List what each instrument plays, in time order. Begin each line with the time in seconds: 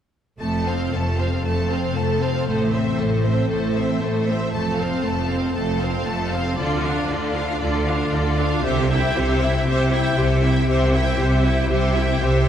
0.40 double bass section F1, cello section F2, harp F2, viola section A3, violin section A4 A5
0.58 harp C3
0.67 viola section C4, violin section C5 F5
0.75 harp F4
0.92 double bass section F1, cello section F2, viola section A3, harp A4, violin section A4 A5
1.09 harp C5
1.17 viola section C4, violin section C5 F5
1.26 harp A4
1.44 double bass section F1, cello section F2, harp F2, viola section A3, violin section A4 A5
1.61 harp C3
1.70 viola section C4, violin section C5 F5
1.79 harp F4
1.95 double bass section F1, cello section F2, viola section A3, harp A4, violin section A4 A5
2.12 harp C5
2.21 viola section C4, violin section C5 F5
2.47 double bass section A1, harp A2, cello section A2, viola section A3, violin section A4 C5
2.64 harp E3
2.72 viola section C4, violin section C5 E5
2.98 double bass section A1, cello section A2, viola section A3, violin section A4 C5, harp A4
3.16 harp C5
3.25 viola section C4, violin section C5 E5
3.33 harp A4
3.50 double bass section A1, cello section A2, harp A2, viola section A3, violin section A4 C5
3.68 harp E3
3.75 viola section C4, violin section C5 E5
3.85 harp E4
4.01 double bass section A1, cello section A2, viola section A3, harp A4, violin section A4 C5
4.19 harp C5
4.27 viola section C4, violin section C5 E5
4.37 harp A4
4.53 double bass section F1, cello section F2, harp F3, viola section A3, violin section A4 A5
4.70 harp C4
4.78 viola section C4, violin section C5 F5
5.03 double bass section F1, cello section F2, viola section A3, violin section A4 A5, harp C5
5.21 harp F5
5.29 viola section C4, violin section C5 F5
5.39 harp C5
5.54 double bass section F1, cello section F2, harp F3, viola section A3, violin section A4 A5
5.73 harp C4
5.79 viola section C4, violin section C5 F5
5.90 harp A4
6.06 double bass section F1, cello section F2, viola section A3, violin section A4 A5, harp C5
6.25 harp F5
6.31 viola section C4, violin section C5 F5
6.41 harp C5
6.57 double bass section D2, cello section D3, harp D3, viola section F4, violin section A4 D5
6.75 harp A3
6.83 viola section D4, violin section F4 F5
6.92 harp F4
7.09 double bass section D2, cello section D3, viola section F4, harp A4, violin section A4 D5
7.26 harp D5
7.34 viola section D4, violin section F4 F5
7.43 harp A4
7.60 double bass section D2, cello section D3, harp D3, viola section F4, violin section A4 D5
7.78 harp A3
7.87 viola section D4, violin section F4 F5
7.95 harp F4
8.12 double bass section D2, cello section D3, viola section F4, harp A4, violin section A4 D5
8.30 harp D5
8.37 viola section D4, violin section F4 F5
8.46 harp A4
8.63 double bass section C2, cello section C3, harp C3, viola section G4, violin section C5 E5
8.81 harp G3
8.91 viola section E4, violin section E5 G5
8.98 harp G4
9.14 double bass section C2, cello section C3, viola section G4, violin section C5 E5, harp C5
9.41 viola section E4, violin section E5 G5
9.49 harp C5
9.66 double bass section C2, cello section C3, harp C3, viola section G4, violin section C5 E5
9.84 harp G3
9.92 viola section E4, violin section E5 G5
10.00 harp G4
10.17 double bass section C2, cello section C3, viola section G4, harp C5, violin section C5 E5
10.35 harp E5
10.43 viola section E4, violin section E5 G5
10.51 harp C5
10.67 double bass section C2, cello section C3, harp C3, viola section G4, violin section C5 E5
10.85 harp G3
10.93 viola section E4, violin section E5 G5
11.02 harp G4
11.18 double bass section C2, cello section C3, viola section G4, violin section C5 E5, harp C5
11.44 viola section E4, violin section E5 G5
11.53 harp C5
11.69 double bass section C2, harp C3, cello section C3, viola section G4, violin section C5 E5
11.87 harp G3
11.94 viola section E4, violin section E5 G5
12.04 harp G4
12.20 double bass section C2, cello section C3, viola section G4, harp C5, violin section C5 E5
12.38 harp E5